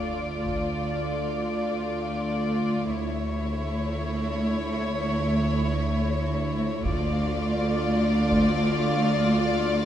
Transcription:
0.00 2.87 D2 medium
0.00 2.87 A3 soft
0.00 2.87 F4 soft
0.00 2.87 D5 soft
0.00 impact soft
0.45 taiko soft
2.91 6.80 D2 soft
2.91 6.81 D2 soft
2.91 6.80 A3 soft
2.91 6.81 E4 soft
2.91 6.81 C#5 soft
6.84 9.85 D2 medium
6.84 9.85 A3 medium
6.84 9.85 F4 medium
6.84 9.85 D5 medium
6.84 9.85 F6 soft
6.84 9.85 A6 soft
6.84 taiko medium
8.32 taiko soft

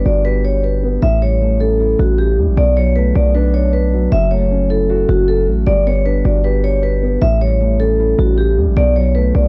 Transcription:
0.00 0.44 G3 loud
0.00 0.64 B3 medium
0.00 0.83 D4 medium
0.06 0.99 G1 loud
0.06 1.03 F#4 medium
0.06 0.22 D5 medium
0.25 1.02 G4 loud
0.25 0.42 B4 medium
0.45 0.61 C#5 medium
0.64 1.00 B4 medium
0.83 1.03 B3 medium
1.02 1.95 A1 loud
1.02 1.99 A2 medium
1.02 1.19 E5 loud
1.22 2.19 G3 medium
1.22 1.58 C#5 medium
1.41 2.38 A3 medium
1.60 2.57 C#4 medium
1.60 1.97 A4 medium
1.80 2.57 E4 loud
1.99 2.39 A1 loud
1.99 2.16 F#4 medium
2.18 2.35 G4 medium
2.38 2.49 E2 medium
2.38 2.57 G3 medium
2.48 2.57 A1 loud
2.57 3.13 B1 loud
2.57 3.54 B2 loud
2.57 2.74 D5 loud
2.77 3.74 F#3 medium
2.77 2.93 C#5 medium
2.96 3.93 A3 loud
2.96 3.12 B4 medium
3.15 4.08 B1 loud
3.15 4.12 B3 medium
3.15 3.32 D5 medium
3.35 4.12 D4 loud
3.35 3.51 B4 medium
3.54 3.71 C#5 medium
3.73 4.10 B4 medium
3.93 4.11 F#3 medium
4.12 5.05 F#1 loud
4.12 5.09 F#3 loud
4.12 4.29 E5 loud
4.31 5.28 A3 medium
4.31 4.68 C#5 medium
4.51 5.48 C#4 medium
4.70 5.67 E4 medium
4.70 5.07 A4 medium
4.90 5.67 F#4 loud
5.09 5.49 F#1 loud
5.09 5.26 F#4 medium
5.28 5.45 A4 medium
5.48 5.66 A1 loud
5.48 5.67 A3 medium
5.67 6.23 G1 loud
5.67 6.64 G3 loud
5.67 5.83 D5 loud
5.86 6.83 B3 medium
5.86 6.03 C#5 medium
6.06 7.03 D4 medium
6.06 6.22 B4 medium
6.25 7.18 G1 loud
6.25 7.22 F#4 medium
6.25 6.42 D5 medium
6.44 7.22 G4 loud
6.44 6.61 B4 medium
6.64 6.80 C#5 medium
6.83 7.20 B4 medium
7.03 7.22 B3 medium
7.22 8.15 A1 loud
7.22 8.19 A2 loud
7.22 7.38 E5 loud
7.41 8.38 G3 medium
7.41 7.78 C#5 medium
7.61 8.57 A3 loud
7.80 8.77 C#4 medium
7.80 8.16 A4 medium
7.99 8.77 E4 loud
8.19 8.59 A1 loud
8.19 8.35 F#4 medium
8.38 8.54 G4 medium
8.57 8.69 E2 loud
8.57 8.77 G3 medium
8.67 8.76 A1 loud
8.77 9.32 B1 loud
8.77 9.48 B2 loud
8.77 8.93 D5 loud
8.96 9.48 F#3 medium
8.96 9.13 C#5 medium
9.15 9.48 A3 medium
9.15 9.32 B4 medium
9.35 9.48 B1 loud
9.35 9.48 B3 medium
9.35 9.48 D5 medium

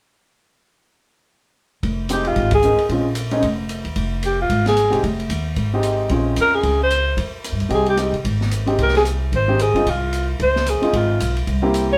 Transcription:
1.83 2.34 F1 medium
1.83 kick soft
1.83 ride soft
2.09 2.49 G#3 medium
2.09 2.49 C4 medium
2.09 2.49 D#4 medium
2.09 2.49 G4 medium
2.09 2.29 G4 medium
2.09 hi-hat pedal medium
2.09 ride medium
2.25 2.53 F4 medium
2.25 ride soft
2.36 2.76 G#1 medium
2.36 kick soft
2.36 ride soft
2.51 2.88 G#4 medium
2.51 kick medium
2.51 ride medium
2.62 2.77 G#3 medium
2.62 2.77 C4 soft
2.62 2.78 D#4 soft
2.62 2.78 A#4 medium
2.62 hi-hat pedal soft
2.77 muted upright bass stroke soft
2.77 ride soft
2.89 3.40 A#1 medium
2.89 3.04 G#3 medium
2.89 3.05 C4 soft
2.89 3.04 C#4 medium
2.89 3.05 F4 medium
2.89 kick soft
2.89 ride soft
3.15 hi-hat pedal medium
3.15 ride medium
3.31 3.42 G#3 medium
3.31 3.42 C4 medium
3.31 3.42 C#4 medium
3.31 3.42 D#4 medium
3.31 ride soft
3.43 3.82 F1 medium
3.43 kick soft
3.43 ride soft
3.69 hi-hat pedal soft
3.69 ride soft
3.85 3.95 D#2 medium
3.85 ride soft
3.96 4.47 F1 medium
3.96 kick soft
3.96 ride soft
4.23 4.39 G4 medium
4.23 hi-hat pedal soft
4.23 ride medium
4.41 4.65 F4 medium
4.50 4.89 G#1 medium
4.50 kick soft
4.50 ride soft
4.66 5.02 G#4 medium
4.66 snare soft
4.66 ride soft
4.77 hi-hat pedal soft
4.77 ride medium
4.90 5.02 C2 medium
4.90 5.01 G#3 medium
4.90 5.01 C4 medium
4.90 5.02 D#4 medium
4.90 5.02 G4 medium
4.90 ride soft
5.03 5.28 F1 medium
5.03 kick soft
5.03 ride soft
5.20 ride soft
5.29 5.54 D#2 medium
5.29 hi-hat pedal soft
5.29 ride medium
5.56 6.07 G#1 medium
5.56 kick soft
5.56 ride soft
5.73 6.08 G#3 medium
5.73 6.09 C4 medium
5.73 6.09 D#4 medium
5.73 6.09 G4 medium
5.83 hi-hat pedal soft
5.83 ride medium
6.09 6.35 A#1 medium
6.09 6.84 G#3 medium
6.09 6.84 C4 medium
6.09 6.84 C#4 soft
6.09 6.85 F4 medium
6.09 kick soft
6.09 ride soft
6.36 6.62 F2 medium
6.36 hi-hat pedal soft
6.36 ride medium
6.41 6.56 A#4 medium
6.55 6.80 G#4 medium
6.63 7.14 C#2 medium
6.63 kick soft
6.63 ride soft
6.83 7.17 C5 medium
6.90 hi-hat pedal soft
6.90 ride soft
7.17 7.50 F2 medium
7.17 kick soft
7.17 ride medium
7.44 hi-hat pedal soft
7.44 ride medium
7.52 7.60 G2 medium
7.60 7.70 E2 medium
7.60 ride soft
7.69 8.10 C2 medium
7.69 7.95 G#3 soft
7.69 7.95 C4 soft
7.69 7.96 D#4 soft
7.69 7.96 G4 medium
7.69 kick soft
7.69 ride soft
7.74 7.87 G#4 medium
7.86 7.98 G4 medium
7.86 ride soft
7.97 8.11 G#3 medium
7.97 8.11 C4 soft
7.97 8.12 D#4 soft
7.97 8.12 G4 medium
7.97 hi-hat pedal soft
7.97 ride medium
8.13 8.23 C3 medium
8.13 ride soft
8.24 8.75 G#1 medium
8.24 kick soft
8.24 ride medium
8.41 snare soft
8.51 hi-hat pedal medium
8.51 ride medium
8.66 9.02 G#3 medium
8.66 9.02 C4 medium
8.66 9.03 D#4 medium
8.66 9.03 G4 medium
8.66 ride soft
8.78 9.29 C2 medium
8.78 kick soft
8.78 ride medium
8.83 8.95 A#4 medium
8.88 snare soft
8.95 9.02 G#4 medium
8.95 snare soft
8.95 ride soft
9.05 hi-hat pedal soft
9.05 ride soft
9.32 9.72 G#1 medium
9.32 kick soft
9.32 ride soft
9.36 9.64 C5 medium
9.48 9.58 G#3 medium
9.48 9.58 C4 medium
9.48 9.58 D#4 medium
9.48 9.58 G4 medium
9.59 9.91 G#4 medium
9.59 hi-hat pedal soft
9.59 ride medium
9.74 9.84 G1 medium
9.74 9.84 G#3 medium
9.74 9.85 C4 medium
9.74 9.85 D#4 medium
9.74 9.85 F4 medium
9.74 ride soft
9.86 10.37 C2 medium
9.86 10.30 F4 medium
9.86 kick soft
9.86 ride medium
10.13 hi-hat pedal soft
10.13 ride soft
10.40 10.79 C#2 medium
10.40 10.71 C5 medium
10.40 kick soft
10.40 ride soft
10.56 snare soft
10.66 10.98 G#4 medium
10.66 hi-hat pedal medium
10.66 ride medium
10.81 11.18 G#3 medium
10.81 11.17 C4 medium
10.81 11.18 D#4 soft
10.81 11.18 F4 medium
10.81 muted upright bass stroke soft
10.81 ride soft
10.93 11.18 G#1 medium
10.93 11.37 F4 medium
10.93 kick soft
10.93 ride medium
11.20 11.45 B1 medium
11.20 hi-hat pedal soft
11.20 ride medium
11.37 ride soft
11.47 11.98 C2 medium
11.47 kick soft
11.47 ride soft
11.62 11.98 A#3 medium
11.62 11.98 C4 medium
11.62 11.98 E4 medium
11.62 11.98 G4 medium
11.74 hi-hat pedal medium
11.74 ride medium
11.93 11.98 C#5 medium

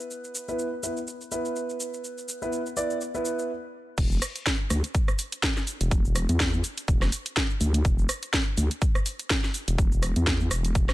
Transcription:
0.00 0.45 B3 medium
0.00 0.45 E4 medium
0.00 0.45 B4 loud
0.00 cabasa soft
0.11 cabasa soft
0.24 cabasa soft
0.35 cabasa medium
0.48 0.67 B3 medium
0.48 0.67 E4 medium
0.48 0.67 B4 medium
0.48 cabasa soft
0.59 cabasa soft
0.83 0.96 B3 medium
0.83 0.96 E4 medium
0.83 0.96 B4 medium
0.83 cabasa medium
0.97 cabasa soft
1.07 cabasa soft
1.21 cabasa soft
1.32 2.39 B3 medium
1.32 2.39 E4 medium
1.32 2.39 B4 medium
1.32 cabasa medium
1.45 cabasa soft
1.56 cabasa soft
1.70 cabasa soft
1.80 cabasa medium
1.94 cabasa soft
2.04 cabasa soft
2.18 cabasa soft
2.28 cabasa medium
2.42 2.60 B3 medium
2.42 2.60 E4 medium
2.42 2.60 B4 medium
2.42 cabasa soft
2.53 cabasa soft
2.66 cabasa soft
2.77 2.96 B3 medium
2.77 2.96 E4 medium
2.77 2.96 D5 loud
2.77 cabasa medium
2.90 cabasa soft
3.01 cabasa soft
3.15 3.49 B3 medium
3.15 3.49 E4 medium
3.15 3.49 B4 medium
3.15 cabasa soft
3.25 cabasa medium
3.39 cabasa soft
3.98 4.20 E1 medium
3.98 kick loud
3.98 closed hi-hat medium
3.98 crash loud
3.98 cabasa soft
4.11 cabasa soft
4.22 cross-stick medium
4.22 open hi-hat loud
4.22 cabasa medium
4.36 closed hi-hat medium
4.36 cabasa soft
4.46 kick loud
4.46 snare loud
4.46 closed hi-hat medium
4.46 cabasa soft
4.70 4.82 D2 loud
4.70 cross-stick medium
4.70 open hi-hat loud
4.70 cabasa medium
4.84 closed hi-hat medium
4.84 cabasa soft
4.95 kick loud
4.95 closed hi-hat medium
4.95 cabasa soft
5.08 cross-stick medium
5.08 cabasa soft
5.19 open hi-hat loud
5.19 cabasa medium
5.32 closed hi-hat medium
5.32 cabasa soft
5.43 kick loud
5.43 snare loud
5.43 closed hi-hat medium
5.43 cabasa soft
5.57 snare soft
5.57 cabasa soft
5.67 open hi-hat medium
5.67 cabasa medium
5.81 6.27 E1 loud
5.81 closed hi-hat medium
5.81 cabasa soft
5.91 kick loud
5.91 closed hi-hat medium
5.91 cabasa soft
6.05 cabasa soft
6.16 cross-stick medium
6.16 open hi-hat loud
6.16 cabasa medium
6.29 6.62 E2 loud
6.29 closed hi-hat medium
6.29 cabasa soft
6.40 kick loud
6.40 snare loud
6.40 closed hi-hat medium
6.40 cabasa soft
6.53 cabasa soft
6.64 open hi-hat loud
6.64 cabasa medium
6.78 closed hi-hat medium
6.78 cabasa soft
6.88 7.11 E1 medium
6.88 kick loud
6.88 closed hi-hat medium
6.88 cabasa soft
7.02 cross-stick medium
7.02 snare soft
7.02 cabasa soft
7.12 open hi-hat loud
7.12 cabasa medium
7.26 closed hi-hat medium
7.26 cabasa soft
7.36 kick loud
7.36 snare loud
7.36 closed hi-hat soft
7.36 cabasa soft
7.50 cabasa soft
7.61 7.83 D2 loud
7.61 open hi-hat loud
7.61 cabasa medium
7.74 closed hi-hat medium
7.74 cabasa soft
7.85 8.07 E1 medium
7.85 kick loud
7.85 closed hi-hat medium
7.85 cabasa soft
7.99 cabasa soft
8.09 cross-stick medium
8.09 open hi-hat loud
8.09 cabasa medium
8.23 closed hi-hat medium
8.23 cabasa soft
8.33 kick loud
8.33 snare loud
8.33 closed hi-hat soft
8.33 cabasa soft
8.57 8.69 D2 loud
8.57 open hi-hat loud
8.57 cabasa medium
8.71 closed hi-hat medium
8.71 cabasa soft
8.82 kick loud
8.82 closed hi-hat medium
8.82 cabasa soft
8.95 cross-stick medium
8.95 cabasa soft
9.06 open hi-hat loud
9.06 cabasa medium
9.19 closed hi-hat medium
9.19 cabasa soft
9.30 kick loud
9.30 snare loud
9.30 closed hi-hat soft
9.30 cabasa soft
9.44 snare soft
9.44 cabasa soft
9.54 open hi-hat loud
9.54 cabasa medium
9.68 10.14 E1 loud
9.68 closed hi-hat medium
9.68 cabasa soft
9.78 kick loud
9.78 closed hi-hat soft
9.78 cabasa soft
9.92 cabasa soft
10.03 cross-stick medium
10.03 open hi-hat loud
10.03 cabasa medium
10.16 10.49 E2 loud
10.16 closed hi-hat medium
10.16 cabasa soft
10.27 kick loud
10.27 snare loud
10.27 closed hi-hat soft
10.27 cabasa soft
10.40 cabasa soft
10.51 10.87 E1 loud
10.51 cross-stick medium
10.51 open hi-hat loud
10.51 cabasa medium
10.65 closed hi-hat medium
10.65 cabasa soft
10.75 kick loud
10.75 closed hi-hat soft
10.75 cabasa soft
10.89 cross-stick medium
10.89 snare soft
10.89 cabasa soft

